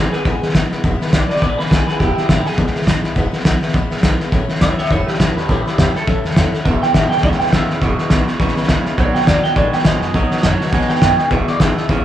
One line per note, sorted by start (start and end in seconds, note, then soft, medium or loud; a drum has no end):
0.00 0.12 E3 medium
0.00 0.12 G#3 medium
0.00 0.12 B3 medium
0.00 0.11 E4 medium
0.00 0.11 G#4 medium
0.00 0.12 B4 medium
0.12 0.24 E3 soft
0.12 0.25 G#3 soft
0.12 0.25 B3 medium
0.12 0.25 E4 medium
0.12 0.24 G#4 medium
0.12 0.26 B4 medium
0.12 snare soft
0.25 0.37 C#2 medium
0.25 0.42 E2 medium
0.25 0.42 B2 medium
0.25 0.42 E3 medium
0.25 0.42 G#3 medium
0.25 0.41 B3 medium
0.25 0.40 E4 medium
0.25 0.54 G#4 loud
0.25 kick loud
0.25 snare soft
0.41 0.53 E3 soft
0.41 0.53 G#3 soft
0.41 0.54 B3 medium
0.41 0.54 E4 medium
0.41 muted upright bass stroke medium
0.41 snare soft
0.49 snare soft
0.54 0.66 G#1 loud
0.54 0.71 E3 medium
0.54 0.71 G#3 medium
0.54 0.70 B3 medium
0.54 0.70 E4 medium
0.54 kick medium
0.54 snare loud
0.54 hi-hat pedal medium
0.71 0.81 B1 medium
0.71 0.83 E3 soft
0.71 0.83 G#3 medium
0.71 0.83 B3 medium
0.71 0.83 E4 medium
0.71 snare soft
0.83 0.96 E1 medium
0.83 1.00 E2 medium
0.83 1.00 B2 medium
0.83 1.01 E3 medium
0.83 1.01 G#3 medium
0.83 1.01 B3 loud
0.83 1.00 E4 loud
0.83 kick loud
0.83 snare soft
1.01 1.11 E3 medium
1.01 1.12 G#3 medium
1.01 1.12 B3 medium
1.01 1.13 E4 medium
1.01 muted upright bass stroke medium
1.01 snare soft
1.07 snare soft
1.12 1.25 B1 medium
1.12 1.30 E3 medium
1.12 1.29 B3 medium
1.12 1.29 E4 medium
1.12 1.28 B4 medium
1.12 1.28 D5 loud
1.12 kick medium
1.12 snare loud
1.12 hi-hat pedal loud
1.29 1.42 E3 soft
1.29 1.42 G#3 soft
1.29 1.42 B3 medium
1.29 1.42 E4 medium
1.29 1.40 B4 medium
1.29 1.41 D5 medium
1.29 muted upright bass stroke medium
1.29 snare soft
1.36 snare soft
1.41 1.54 C#2 medium
1.41 1.59 E2 medium
1.41 1.59 B2 medium
1.41 1.59 E3 medium
1.41 1.59 G#3 medium
1.41 1.58 B3 medium
1.41 1.58 E4 medium
1.41 1.57 B4 medium
1.41 1.58 D5 loud
1.41 kick loud
1.41 snare soft
1.58 1.68 B1 medium
1.58 1.69 E3 soft
1.58 1.69 G#3 medium
1.58 1.70 B3 medium
1.58 1.71 E4 medium
1.58 1.68 G#4 medium
1.58 1.69 B4 loud
1.58 snare soft
1.66 1.86 G#4 medium
1.66 snare soft
1.70 1.83 B1 medium
1.70 1.88 E3 medium
1.70 1.88 G#3 medium
1.70 1.87 B3 medium
1.70 1.86 E4 medium
1.70 1.87 B4 medium
1.70 kick loud
1.70 snare loud
1.70 hi-hat pedal medium
1.87 1.99 E3 soft
1.87 1.99 G#3 soft
1.87 2.00 B3 soft
1.87 2.00 E4 medium
1.87 1.99 G#4 medium
1.87 1.98 B4 medium
1.87 snare soft
1.99 2.12 E1 loud
1.99 2.17 E2 medium
1.99 2.17 B2 medium
1.99 2.17 E3 medium
1.99 2.17 G#3 medium
1.99 2.17 B3 medium
1.99 2.14 E4 medium
1.99 2.16 E4 medium
1.99 2.15 G4 medium
1.99 kick loud
1.99 snare soft
2.15 2.29 G#3 soft
2.15 2.29 B3 medium
2.15 2.27 E4 medium
2.15 2.29 E4 medium
2.15 2.28 G4 medium
2.15 muted upright bass stroke medium
2.15 snare soft
2.19 2.27 E3 soft
2.28 2.41 G#1 medium
2.28 2.46 E3 medium
2.28 2.46 G#3 medium
2.28 2.45 B3 medium
2.28 2.44 E4 medium
2.28 2.46 G4 medium
2.28 kick medium
2.28 snare loud
2.28 hi-hat pedal medium
2.45 2.57 E3 soft
2.45 2.57 G#3 soft
2.45 2.57 B3 medium
2.45 2.58 E4 medium
2.45 3.02 G#4 loud
2.45 muted upright bass stroke medium
2.45 snare soft
2.52 snare soft
2.58 2.70 C#2 medium
2.58 2.75 E2 medium
2.58 2.75 B2 medium
2.58 2.75 E3 medium
2.58 2.75 G#3 medium
2.58 2.74 B3 medium
2.58 2.73 E4 medium
2.58 kick loud
2.58 snare soft
2.67 snare soft
2.74 2.86 E3 soft
2.74 2.86 G#3 soft
2.74 2.87 B3 medium
2.74 2.87 E4 medium
2.74 muted upright bass stroke medium
2.74 snare soft
2.82 snare soft
2.87 2.99 G#1 medium
2.87 3.04 E3 medium
2.87 3.04 G#3 medium
2.87 3.03 B3 medium
2.87 3.02 E4 medium
2.87 kick loud
2.87 snare loud
2.87 hi-hat pedal loud
3.03 3.12 B1 medium
3.03 3.15 E3 soft
3.03 3.15 G#3 medium
3.03 3.15 B3 medium
3.03 3.15 E4 medium
3.03 snare soft
3.15 3.28 E1 medium
3.15 3.33 E2 medium
3.15 3.33 B2 medium
3.15 3.33 E3 loud
3.15 3.32 G#3 medium
3.15 3.32 B3 medium
3.15 3.30 E4 loud
3.15 kick loud
3.15 snare soft
3.32 3.42 E3 soft
3.32 3.43 G#3 medium
3.32 3.44 B3 medium
3.32 3.44 E4 medium
3.32 muted upright bass stroke medium
3.32 snare soft
3.40 3.61 E3 medium
3.40 snare soft
3.44 3.57 B1 medium
3.44 3.61 G#3 medium
3.44 3.60 B3 medium
3.44 3.60 E4 medium
3.44 kick loud
3.44 snare loud
3.44 hi-hat pedal medium
3.61 3.73 E3 soft
3.61 3.73 G#3 medium
3.61 3.73 B3 medium
3.61 3.73 E4 medium
3.61 snare soft
3.68 snare soft
3.73 3.91 E2 medium
3.73 3.91 B2 medium
3.73 3.91 E3 medium
3.73 3.90 G#3 medium
3.73 3.90 B3 loud
3.73 3.89 E4 medium
3.73 kick loud
3.73 snare soft
3.90 4.00 B1 medium
3.90 4.01 E3 medium
3.90 4.02 G#3 medium
3.90 4.03 B3 medium
3.90 4.03 E4 medium
3.90 snare soft
3.97 snare soft
4.03 4.16 B1 loud
4.03 4.20 E3 medium
4.03 4.21 G#3 medium
4.03 4.20 B3 medium
4.03 4.19 E4 medium
4.03 kick loud
4.03 snare loud
4.03 hi-hat pedal medium
4.20 4.31 E3 soft
4.20 4.32 G#3 medium
4.20 4.32 B3 medium
4.20 4.32 E4 medium
4.20 snare soft
4.32 4.45 A1 medium
4.32 4.49 A2 medium
4.32 4.49 E3 medium
4.32 4.50 A3 medium
4.32 4.48 C#4 medium
4.32 4.47 E4 loud
4.32 kick loud
4.32 snare soft
4.49 4.61 A3 soft
4.49 4.61 C#4 medium
4.49 4.61 E4 medium
4.49 muted upright bass stroke medium
4.49 snare soft
4.55 snare soft
4.61 4.74 C#2 medium
4.61 4.79 E3 medium
4.61 4.79 A3 medium
4.61 4.79 C#4 medium
4.61 4.78 E4 medium
4.61 4.77 C#5 medium
4.61 4.78 E5 medium
4.61 kick loud
4.61 snare loud
4.61 hi-hat pedal medium
4.78 4.91 A3 soft
4.78 4.91 C#4 soft
4.78 4.91 E4 medium
4.78 4.90 C#5 medium
4.78 4.90 E5 medium
4.78 muted upright bass stroke medium
4.78 snare soft
4.85 snare soft
4.91 5.03 F#1 loud
4.91 5.08 A2 medium
4.91 5.08 E3 medium
4.91 5.09 A3 medium
4.91 5.08 C#4 medium
4.91 5.07 E4 loud
4.91 5.07 C#5 medium
4.91 5.08 E5 medium
4.91 kick loud
4.91 snare soft
5.07 5.20 A3 soft
5.07 5.20 C#4 medium
5.07 5.20 E4 medium
5.07 5.19 G4 medium
5.07 5.19 B4 loud
5.07 snare soft
5.14 snare soft
5.20 5.32 C#2 medium
5.20 5.37 E3 medium
5.20 5.38 A3 medium
5.20 5.37 C#4 medium
5.20 5.36 E4 medium
5.20 5.35 G4 medium
5.20 5.36 B4 medium
5.20 kick medium
5.20 snare loud
5.20 hi-hat pedal medium
5.36 5.45 E2 loud
5.36 5.48 A3 soft
5.36 5.48 C#4 medium
5.36 5.48 E4 medium
5.36 5.48 G4 loud
5.36 5.49 B4 loud
5.36 snare soft
5.48 5.61 A1 loud
5.48 5.66 A2 medium
5.48 5.66 E3 medium
5.48 5.66 A3 medium
5.48 5.65 C#4 medium
5.48 5.65 E4 medium
5.48 5.64 E4 medium
5.48 5.67 G4 loud
5.48 kick loud
5.48 snare soft
5.66 5.76 A3 soft
5.66 5.77 C#4 medium
5.66 5.77 E4 medium
5.66 5.78 G4 loud
5.66 muted upright bass stroke medium
5.66 snare soft
5.76 5.91 E2 medium
5.76 5.94 E3 medium
5.76 5.95 A3 medium
5.76 5.94 C#4 medium
5.76 5.93 E4 medium
5.76 5.94 E4 medium
5.76 5.96 G4 medium
5.76 kick medium
5.76 snare loud
5.76 hi-hat pedal medium
5.94 6.06 A3 soft
5.94 6.06 C#4 soft
5.94 6.06 E4 medium
5.94 6.52 A4 medium
5.94 muted upright bass stroke medium
5.94 snare soft
6.06 6.20 F#2 medium
6.06 6.24 A2 medium
6.06 6.24 E3 medium
6.06 6.24 A3 medium
6.06 6.23 C#4 medium
6.06 6.22 E4 medium
6.06 kick loud
6.06 snare soft
6.23 6.33 E2 medium
6.23 6.35 A3 soft
6.23 6.36 C#4 medium
6.23 6.36 E4 medium
6.23 snare soft
6.31 snare soft
6.36 6.49 E2 medium
6.36 6.53 E3 medium
6.36 6.53 A3 medium
6.36 6.52 C#4 medium
6.36 6.51 E4 medium
6.36 kick medium
6.36 snare loud
6.36 hi-hat pedal medium
6.52 6.65 A3 medium
6.52 6.66 C#4 medium
6.52 6.65 E4 medium
6.52 muted upright bass stroke medium
6.52 snare soft
6.65 6.78 E1 medium
6.65 6.82 E2 medium
6.65 6.93 E2 loud
6.65 6.83 B2 medium
6.65 6.93 B2 medium
6.65 6.83 E3 medium
6.65 6.82 G#3 medium
6.65 6.82 B3 medium
6.65 6.81 E4 medium
6.65 6.82 E5 loud
6.65 kick loud
6.65 snare soft
6.81 6.93 E3 soft
6.81 6.94 G#3 medium
6.81 6.94 B3 medium
6.81 6.95 E4 medium
6.81 6.94 G5 loud
6.81 muted upright bass stroke medium
6.81 snare soft
6.94 7.07 G#1 medium
6.94 7.21 E2 medium
6.94 7.22 B2 loud
6.94 7.11 E3 medium
6.94 7.12 G#3 medium
6.94 7.11 B3 medium
6.94 7.11 E4 medium
6.94 7.10 E5 loud
6.94 kick loud
6.94 snare loud
6.94 hi-hat pedal loud
7.10 7.23 E3 soft
7.10 7.23 G#3 medium
7.10 7.23 B3 soft
7.10 7.24 E4 medium
7.10 7.23 G5 loud
7.10 snare soft
7.18 snare soft
7.22 7.36 C#2 medium
7.22 7.51 E2 medium
7.22 7.41 E2 medium
7.22 7.41 B2 medium
7.22 7.53 C#3 medium
7.22 7.41 E3 medium
7.22 7.41 G#3 medium
7.22 7.40 B3 medium
7.22 7.39 E4 medium
7.22 7.38 E5 loud
7.22 kick loud
7.22 snare soft
7.32 snare soft
7.39 7.51 E3 soft
7.39 7.52 G#3 medium
7.39 7.53 B3 medium
7.39 7.53 E4 medium
7.39 7.51 G5 loud
7.39 muted upright bass stroke medium
7.39 snare soft
7.47 snare soft
7.51 7.65 G#1 medium
7.51 7.80 E2 medium
7.51 7.80 C#3 medium
7.51 7.70 E3 medium
7.51 7.70 G#3 medium
7.51 7.69 B3 medium
7.51 7.68 E4 medium
7.51 8.37 E5 loud
7.51 kick medium
7.51 snare loud
7.51 hi-hat pedal loud
7.69 7.78 B1 loud
7.69 7.81 E3 soft
7.69 7.81 G#3 soft
7.69 7.81 B3 soft
7.69 7.81 E4 soft
7.69 snare soft
7.81 7.94 E1 loud
7.81 7.99 E2 medium
7.81 8.09 E2 loud
7.81 7.99 B2 medium
7.81 8.10 B2 loud
7.81 7.99 E3 medium
7.81 7.99 G#3 medium
7.81 7.98 B3 medium
7.81 7.98 E4 medium
7.81 kick loud
7.81 snare soft
7.99 8.09 E3 soft
7.99 8.10 G#3 medium
7.99 8.11 B3 medium
7.99 8.11 E4 medium
7.99 muted upright bass stroke medium
7.99 snare soft
8.10 8.23 B1 loud
8.10 8.37 E2 medium
8.10 8.38 B2 medium
8.10 8.28 E3 medium
8.10 8.27 G#3 medium
8.10 8.26 B3 medium
8.10 8.26 E4 medium
8.10 kick medium
8.10 snare loud
8.10 hi-hat pedal loud
8.27 8.40 E3 soft
8.27 8.40 G#3 soft
8.27 8.40 B3 medium
8.27 8.40 E4 medium
8.27 snare soft
8.40 8.68 E2 medium
8.40 8.57 E2 medium
8.40 8.58 B2 medium
8.40 8.68 C#3 loud
8.40 8.58 E3 loud
8.40 8.57 G#3 medium
8.40 8.56 B3 loud
8.40 8.56 E4 loud
8.40 kick loud
8.40 snare soft
8.48 snare soft
8.56 8.66 B1 medium
8.56 8.67 E3 medium
8.56 8.68 G#3 medium
8.56 8.69 B3 medium
8.56 8.69 E4 medium
8.56 snare soft
8.63 snare soft
8.68 8.81 C#2 medium
8.68 8.96 E2 medium
8.68 8.96 C#3 medium
8.68 8.86 E3 medium
8.68 8.86 G#3 medium
8.68 8.86 B3 medium
8.68 8.85 E4 medium
8.68 kick loud
8.68 snare loud
8.68 hi-hat pedal medium
8.85 8.98 E3 soft
8.85 8.98 G#3 soft
8.85 8.97 B3 medium
8.85 8.99 E4 medium
8.85 muted upright bass stroke medium
8.85 snare soft
8.97 9.11 B1 loud
8.97 9.26 B2 medium
8.97 9.15 B2 medium
8.97 9.27 F#3 loud
8.97 9.16 F#3 medium
8.97 9.16 B3 medium
8.97 9.15 D#4 medium
8.97 9.14 F#4 medium
8.97 9.15 D5 loud
8.97 kick loud
8.97 snare soft
9.14 9.27 B3 soft
9.14 9.27 D#4 soft
9.14 9.28 F#4 medium
9.14 9.27 G5 loud
9.14 muted upright bass stroke medium
9.14 snare soft
9.21 snare soft
9.27 9.39 D#2 medium
9.27 9.54 B2 medium
9.27 9.44 F#3 medium
9.27 9.55 F#3 medium
9.27 9.44 B3 medium
9.27 9.43 D#4 medium
9.27 9.42 F#4 medium
9.27 9.44 D5 loud
9.27 kick loud
9.27 snare loud
9.27 hi-hat pedal medium
9.43 9.56 B3 soft
9.43 9.56 D#4 medium
9.43 9.56 F#4 medium
9.43 9.56 G5 loud
9.43 muted upright bass stroke medium
9.43 snare soft
9.56 9.68 A1 medium
9.56 9.73 B2 medium
9.56 9.84 B2 medium
9.56 9.74 F#3 medium
9.56 9.84 G#3 medium
9.56 9.74 B3 medium
9.56 9.73 D#4 medium
9.56 9.72 F#4 medium
9.56 9.73 D5 loud
9.56 kick loud
9.56 snare soft
9.73 9.85 B3 medium
9.73 9.86 D#4 medium
9.73 9.86 F#4 medium
9.73 9.86 G5 medium
9.73 muted upright bass stroke medium
9.73 snare soft
9.79 snare soft
9.85 9.97 D#2 loud
9.85 10.12 B2 medium
9.85 10.03 F#3 medium
9.85 10.12 G#3 medium
9.85 10.03 B3 medium
9.85 10.02 D#4 medium
9.85 10.01 F#4 medium
9.85 10.71 D#5 loud
9.85 kick loud
9.85 snare loud
9.85 hi-hat pedal loud
10.02 10.11 F#2 loud
10.02 10.14 B3 soft
10.02 10.14 D#4 soft
10.02 10.14 F#4 medium
10.02 snare soft
10.14 10.27 B1 loud
10.14 10.31 B2 medium
10.14 10.43 B2 medium
10.14 10.32 F#3 medium
10.14 10.44 F#3 loud
10.14 10.32 B3 medium
10.14 10.31 D#4 medium
10.14 10.30 F#4 medium
10.14 kick loud
10.14 snare soft
10.31 10.43 B3 medium
10.31 10.44 D#4 medium
10.31 10.44 F#4 medium
10.31 muted upright bass stroke medium
10.31 snare soft
10.37 snare soft
10.43 10.56 F#2 medium
10.43 10.71 B2 medium
10.43 10.61 F#3 medium
10.43 10.71 F#3 loud
10.43 10.61 B3 medium
10.43 10.61 D#4 medium
10.43 10.60 F#4 medium
10.43 kick loud
10.43 snare loud
10.43 hi-hat pedal loud
10.60 10.73 B3 medium
10.60 10.73 D#4 medium
10.60 10.73 F#4 medium
10.60 muted upright bass stroke medium
10.60 snare soft
10.67 snare soft
10.72 10.85 A2 loud
10.72 10.90 B2 medium
10.72 11.01 B2 medium
10.72 10.90 F#3 medium
10.72 11.02 G#3 loud
10.72 10.90 B3 loud
10.72 10.90 D#4 medium
10.72 10.89 F#4 loud
10.72 kick loud
10.72 snare soft
10.81 snare soft
10.89 10.99 F#2 medium
10.89 11.01 B3 medium
10.89 11.02 D#4 medium
10.89 11.02 F#4 medium
10.89 11.30 G5 loud
10.89 snare soft
10.95 snare soft
11.01 11.14 F#2 loud
11.01 11.29 B2 medium
11.01 11.19 F#3 medium
11.01 11.29 G#3 loud
11.01 11.19 B3 medium
11.01 11.19 D#4 medium
11.01 kick loud
11.01 snare loud
11.01 hi-hat pedal loud
11.18 11.30 B3 soft
11.18 11.30 D#4 soft
11.18 11.31 F#4 medium
11.18 muted upright bass stroke medium
11.18 snare soft
11.30 11.43 E1 loud
11.30 11.48 E2 medium
11.30 11.59 E2 loud
11.30 11.48 B2 medium
11.30 11.60 B2 loud
11.30 11.48 E3 medium
11.30 11.47 B3 medium
11.30 11.47 E4 medium
11.30 11.46 G#4 medium
11.30 11.48 E5 loud
11.30 kick loud
11.30 snare soft
11.47 11.58 E3 soft
11.47 11.59 B3 soft
11.47 11.60 E4 soft
11.47 11.60 G#4 medium
11.47 11.60 D5 loud
11.47 snare soft
11.60 11.72 G#1 medium
11.60 11.87 E2 medium
11.60 11.87 B2 loud
11.60 11.76 E3 medium
11.60 11.75 B3 medium
11.60 11.75 E4 medium
11.60 11.74 G#4 medium
11.60 12.05 E5 loud
11.60 kick medium
11.60 snare loud
11.60 hi-hat pedal medium
11.76 11.88 E3 soft
11.76 11.88 B3 soft
11.76 11.88 E4 soft
11.76 11.88 G#4 medium
11.76 muted upright bass stroke medium
11.76 snare soft
11.89 12.01 C#2 loud
11.89 12.05 E2 medium
11.89 12.05 B2 medium
11.89 12.05 C#3 loud
11.89 12.05 E3 medium
11.89 12.05 B3 loud
11.89 12.04 E4 loud
11.89 12.03 G#4 loud
11.89 kick loud
11.89 snare soft